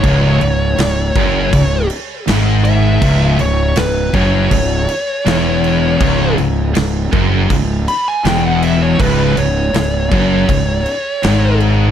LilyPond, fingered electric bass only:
\new Staff \with { instrumentName = "Fingered electric bass" } { \clef bass \time 4/4 \key cis \minor \tempo 4 = 80 cis,,8 cis,,8 cis,,8 fis,,8 cis,,8 r8 gis,,4 | cis,,8 cis,,8 cis,,8 fis,,8 cis,,8 r8 e,,4 | cis,,8 cis,,8 cis,,8 fis,,8 cis,,8 r8 e,,4 | cis,,8 cis,,8 cis,,8 fis,,8 cis,,8 r8 gis,,4 | }